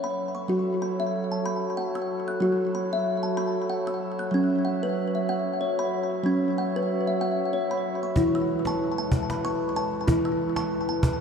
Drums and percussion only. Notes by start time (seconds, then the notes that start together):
8.16 cajon bass
8.47 cajon slap
8.65 cajon slap
9.11 cajon bass
9.30 cajon slap
10.08 cajon bass
10.39 cajon slap
10.56 cajon slap
11.03 cajon bass